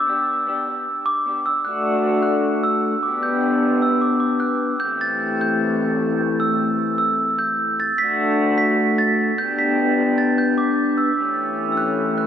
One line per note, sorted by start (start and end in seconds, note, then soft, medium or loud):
0.00 0.82 D6 medium
0.07 0.46 B3 medium
0.07 0.47 D4 loud
0.07 0.48 G4 loud
0.47 0.86 B3 loud
0.47 0.69 D4 loud
0.47 0.66 G4 loud
0.67 1.26 D4 medium
0.67 1.28 G4 medium
1.06 1.47 D6 loud
1.26 1.64 B3 medium
1.26 1.47 D4 medium
1.26 1.45 G4 medium
1.46 1.65 D4 medium
1.46 1.65 G4 medium
1.46 1.64 E6 medium
1.65 3.04 A3 medium
1.65 3.05 D4 medium
1.65 2.02 F#6 medium
1.69 3.06 F#4 medium
2.23 2.65 F#6 medium
2.63 3.01 E6 medium
3.03 4.83 B3 medium
3.03 4.83 D4 medium
3.03 3.22 D6 medium
3.08 4.85 G4 medium
3.23 3.79 G6 medium
3.82 4.04 E6 medium
4.01 4.19 D6 medium
4.20 4.42 D6 medium
4.40 4.83 F#6 medium
4.80 8.01 E3 medium
4.80 8.00 A3 medium
4.80 5.02 G6 medium
4.84 8.02 C4 medium
4.84 8.03 G4 medium
5.01 5.43 A6 medium
5.41 6.45 G6 medium
6.40 6.97 E6 medium
6.98 7.41 E6 medium
7.39 7.81 G6 medium
7.80 8.01 A6 medium
7.98 9.39 A3 medium
7.98 9.40 D4 medium
7.98 8.37 B6 loud
8.04 9.42 F#4 medium
8.58 8.96 B6 loud
8.98 9.41 A6 loud
9.38 11.18 B3 medium
9.38 11.20 D4 medium
9.38 9.60 G6 loud
9.43 11.20 G4 medium
9.59 10.21 B6 loud
10.18 10.40 A6 medium
10.38 10.60 G6 loud
10.58 10.96 D6 medium
10.98 11.71 E6 medium
11.17 12.27 E3 medium
11.17 12.27 A3 medium
11.17 12.27 C#4 medium
11.17 12.27 G4 medium
11.72 11.80 E6 medium
11.77 12.16 F#6 medium
12.18 12.27 F#6 medium